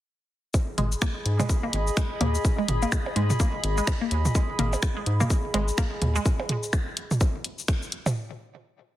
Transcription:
0.54 ambient pad G#4, kick, percussion blips, shaker
0.78 analog synth bass G#1, synth arpeggio sound G#3, closed hi-hat, mid tom
0.84 ambient pad D#5 B5
0.92 shaker
1.02 synth arpeggio sound A#3, finger snap, kick, shaker
1.25 analog synth bass G#2, closed hi-hat
1.40 synth arpeggio sound G#3, mid tom, percussion blips, shaker
1.49 kick, shaker
1.63 synth arpeggio sound A#3
1.73 analog synth bass G#1, closed hi-hat
1.87 shaker
1.97 synth arpeggio sound G#3, finger snap, kick, shaker
2.21 analog synth bass D#2, synth arpeggio sound A#3, closed hi-hat, mid tom, percussion blips
2.35 shaker
2.45 kick, shaker
2.59 synth arpeggio sound G#3
2.68 analog synth bass G#1, closed hi-hat, mid tom
2.82 synth arpeggio sound A#3, shaker
2.92 finger snap, kick, shaker
3.06 percussion blips
3.16 analog synth bass G#2, synth arpeggio sound G#3, closed hi-hat
3.30 mid tom, shaker
3.40 synth arpeggio sound A#3, kick, shaker
3.64 analog synth bass G#1, closed hi-hat
3.78 synth arpeggio sound G#3, shaker
3.87 finger snap, kick, percussion blips, shaker
4.01 synth arpeggio sound A#3
4.11 analog synth bass D#2, closed hi-hat
4.25 mid tom, shaker
4.35 synth arpeggio sound G#3, kick, shaker
4.59 analog synth bass G#1, synth arpeggio sound A#3, closed hi-hat, mid tom
4.73 percussion blips, shaker
4.83 finger snap, kick, shaker
4.97 synth arpeggio sound G#3
5.06 analog synth bass G#2, closed hi-hat
5.20 synth arpeggio sound A#3, mid tom, shaker
5.30 kick, shaker
5.54 analog synth bass G#1, synth arpeggio sound G#3, closed hi-hat, percussion blips
5.68 shaker
5.78 synth arpeggio sound A#3, finger snap, kick, shaker
6.02 analog synth bass D#2, closed hi-hat, mid tom
6.16 synth arpeggio sound G#3, shaker
6.25 kick, shaker
6.40 percussion blips
6.49 closed hi-hat, mid tom
6.63 shaker
6.73 finger snap, kick, shaker
6.97 closed hi-hat
7.11 mid tom, shaker
7.21 kick, percussion blips, shaker
7.44 closed hi-hat
7.59 shaker
7.68 finger snap, kick, shaker
7.82 shaker
7.92 closed hi-hat
8.06 mid tom, percussion blips, shaker

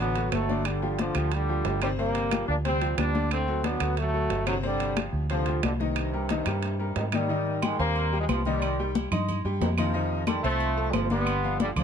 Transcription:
Already playing: fingered electric bass A1
0.00 grand piano D3 D4 D5, trombone section F#3 B3, high conga
0.16 grand piano F#3 F#4 A4, high conga, high timbale
0.32 fingered electric bass G1, trombone section F#3 A3, high conga, high timbale, low timbale, claves
0.49 grand piano D3 D4 D5, high conga
0.65 trombone section D3 G3, high conga, high timbale, claves
0.82 grand piano F3 F4 G4, high conga
0.99 grand piano D3 D4 D5, trombone section D3 F3, high conga, high timbale, low timbale
1.15 fingered electric bass D2, grand piano F3 F4 G4, high conga, high timbale, claves
1.32 trombone section D3 G3, high conga, high timbale
1.49 grand piano F3 F4 G4, high conga
1.65 fingered electric bass G1, high conga, high timbale, low timbale
1.82 grand piano C3 C4 C5, trombone section D#3 G3, high timbale, claves
1.98 grand piano C3 C4 C5, trombone section G3 A#3, high conga
2.15 high conga, high timbale
2.31 grand piano F3 F4 G4, high conga, high timbale, low timbale, claves
2.48 fingered electric bass D2, trombone section A#3 D4
2.65 grand piano C3 C4 C5, trombone section G3 C4, high conga, high timbale
2.81 grand piano F3 F4 G4, high conga, high timbale
2.97 fingered electric bass D2, trombone section G3 D4, high conga, high timbale, low timbale, claves
3.15 grand piano D3 D4 D5, high conga
3.31 trombone section A3 C4, high conga, high timbale, claves
3.48 grand piano F#3 F#4 A4, high conga
3.64 grand piano D3 D4 D5, trombone section F#3 B3, high conga, high timbale, low timbale
3.80 fingered electric bass D2, grand piano F#3 F#4 A4, high conga, high timbale, claves
3.97 trombone section F#3 A3, high conga, high timbale
4.14 grand piano F#3 F#4 A4, high conga
4.30 fingered electric bass G1, high conga, high timbale, low timbale
4.46 grand piano C3 C4 C5, trombone section D3 F#3, high timbale, claves
4.63 grand piano C3 C4 C5, trombone section D3 G3, high conga
4.80 high conga, high timbale
4.96 grand piano F3 F4 G4, high conga, high timbale, low timbale, claves
5.13 fingered electric bass D2
5.30 grand piano C3 C4 C5, trombone section D3 F3, high conga, high timbale
5.46 grand piano F3 F4 G4, high conga, high timbale
5.63 fingered electric bass C2, trombone section G2 D3, high conga, high timbale, low timbale, claves
5.80 trombone section G2 C3, grand piano D#3 D#4 D#5, high conga
5.96 high conga, high timbale, claves
6.13 grand piano G3 G4 A#4, high conga
6.29 grand piano D#3 D#4 D#5, high conga, high timbale, low timbale
6.46 fingered electric bass G2, grand piano G3 G4 A#4, high conga, high timbale, claves
6.63 high conga, high timbale
6.79 grand piano G3 G4 A#4, high conga
6.96 fingered electric bass G#2, trombone section C3 D#3, high conga, high timbale, low timbale
7.12 grand piano D#3 D#4 D#5, trombone section D#3 G3, high conga, high timbale, claves
7.29 grand piano D#3 D#4 D#5, high conga
7.46 high conga
7.62 trombone section D#3 G#3, grand piano G3 G4 G5, high conga, low timbale, low agogo, claves
7.79 fingered electric bass D#2, trombone section G3 A#3, grand piano C4 C5 G#5, high conga
7.95 high conga, low agogo
8.12 grand piano G3 G4 G5, high conga
8.19 trombone section F3 G#3
8.28 fingered electric bass C2, trombone section C3 F3, high conga, low timbale, low agogo, claves
8.45 trombone section D#3 G3, grand piano D#3 D#4 D#5, high conga
8.62 high conga, low agogo, claves
8.79 grand piano G3 G4 G5, high conga
8.95 high conga, low timbale, low agogo
9.11 fingered electric bass G2, grand piano D#4 D#5 D#6, high conga, low conga, low agogo, claves
9.29 high conga, low conga, low agogo
9.44 fingered electric bass G2, grand piano G3 G4 G5, high conga
9.60 fingered electric bass F2, trombone section C3 D#3, high conga, low timbale, low agogo
9.77 trombone section C3 F3, grand piano D#3 D#4 D#5, high conga, low agogo, claves
9.94 grand piano D#3 D#4 D#5, high conga
10.11 high conga
10.27 trombone section D#3 G3, grand piano A3 A4 A5, high conga, low timbale, low agogo, claves
10.43 fingered electric bass C2, trombone section F3 A3, grand piano C4 C5 C6, high conga
10.60 high conga, low agogo
10.77 grand piano A3 A4 A5, high conga
10.93 fingered electric bass G1, trombone section C3 F3, high conga, low timbale, low agogo, claves
11.10 grand piano D3 D4 D5, trombone section G3 B3, high conga
11.27 low agogo, claves
11.43 grand piano F3 F4 F5, high conga
11.60 trombone section D3 G3, high conga, low timbale, low agogo
11.76 fingered electric bass D2, trombone section D3 F3, grand piano D4 D5 D6, high conga, low conga, low agogo, claves

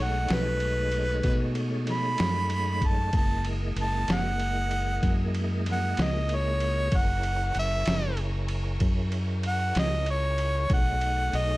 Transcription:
Already playing: tonewheel organ G#3 A3 D#4 C#5
0.00 fingered electric bass B1, harmonica F#5
0.28 fingered electric bass B1, snare, ride
0.33 harmonica B4
0.60 ride
0.92 ride
1.23 fingered electric bass B2, kick, ride
1.55 ride
1.87 snare, ride
1.92 harmonica B5
2.18 fingered electric bass F#2, snare, ride
2.50 ride
2.82 kick, ride
2.87 harmonica A5
3.13 fingered electric bass F#1, tonewheel organ G#3 A#3 E4 D#5, kick, ride
3.17 harmonica A5
3.45 ride
3.76 fingered electric bass F#1, ride
3.82 harmonica A5
4.08 fingered electric bass F#1, snare, ride
4.14 harmonica F#5
4.40 ride
4.71 ride
5.03 fingered electric bass F#2, kick, ride
5.35 ride
5.66 snare, ride
5.72 harmonica F#5
5.97 fingered electric bass C#2, snare, ride
6.02 harmonica D#5
6.29 ride
6.35 harmonica C#5
6.60 ride
6.91 fingered electric bass F#1, tonewheel organ E4 G#4 A#4 C#5, kick, ride
6.97 harmonica F#5
7.23 ride
7.55 fingered electric bass F#1, ride
7.59 harmonica E5
7.86 fingered electric bass F#1, snare, ride
8.17 ride
8.48 ride
8.80 fingered electric bass F#2, kick, ride
9.12 ride
9.43 ride
9.48 harmonica F#5
9.75 fingered electric bass C#2, harmonica D#5, snare, ride
10.06 ride
10.11 harmonica C#5
10.38 ride
10.69 fingered electric bass B1, tonewheel organ A3 D#4 G#4 C#5, kick, ride
10.74 harmonica F#5
11.01 ride
11.33 fingered electric bass B1, harmonica D#5, ride

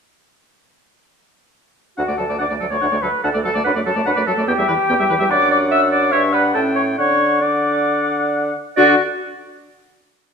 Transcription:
1.97 bassoon D2, french horn D4, clarinet F#4, oboe F#5, flute F#5
2.08 bassoon D2, french horn A3, oboe D5
2.17 bassoon D2, french horn F#3, oboe A4, clarinet A4, flute A5
2.29 bassoon D2, french horn A3, oboe D5
2.38 bassoon D2, french horn D4, clarinet D5, oboe F#5, flute D6
2.50 bassoon D2, french horn A3, oboe D5
2.60 bassoon D2, french horn F#3, oboe A4
2.70 bassoon D2, french horn A3, clarinet C#5, oboe D5, flute C#6
2.81 bassoon D2, french horn D4, oboe F#5
2.91 bassoon D2, french horn A3, oboe D5
3.02 bassoon D2, french horn F#3, oboe A4, clarinet B4, flute B5
3.23 bassoon D2, french horn D4, clarinet A4, oboe F#5, flute A5
3.34 bassoon D2, french horn A3, oboe D5
3.43 bassoon D2, french horn F#3, clarinet A4, oboe A4, flute A5
3.54 bassoon D2, french horn A3, oboe D5
3.64 bassoon F#2, french horn D4, clarinet B4, oboe F#5, flute B5
3.75 bassoon F#2, french horn A3, oboe D5
3.86 bassoon F#2, french horn F#3, oboe A4, clarinet A4, flute A5
3.95 bassoon F#2, french horn A3, oboe D5
4.06 bassoon F#2, french horn D4, clarinet B4, oboe F#5, flute B5
4.16 bassoon F#2, french horn A3, oboe D5
4.27 bassoon F#2, french horn F#3, oboe A4, clarinet A4, flute A5
4.37 bassoon F#2, french horn A3, oboe D5
4.48 bassoon E2, french horn B3, clarinet G4, oboe G5, flute G5
4.58 bassoon E2, french horn G3, oboe E5
4.68 bassoon E2, french horn E3, oboe B4
4.89 bassoon E2, french horn B3, oboe G5
4.99 bassoon E2, french horn G3, oboe E5
5.09 bassoon E2, french horn E3, oboe B4
5.19 bassoon E2, french horn G3, oboe E5
5.29 bassoon F#2, french horn D4, clarinet D5, oboe F#5, flute D6
5.51 clarinet D5, flute D6
5.72 clarinet E5, flute E6
5.92 clarinet D5, flute D6
6.12 bassoon G2, french horn D4, clarinet C#5, oboe E5, flute C#6
6.33 clarinet B4, oboe F#5, flute B5
6.54 bassoon A2, french horn C#4, clarinet A4, oboe G5, flute A5
6.75 clarinet C#5, flute C#6
6.98 bassoon D3, french horn D4, clarinet C#5, oboe F#5, flute C#6
7.41 french horn D4, clarinet D5, oboe F#5, flute D6
8.76 bassoon D3, french horn D4, oboe F#4, flute F#4, clarinet D5

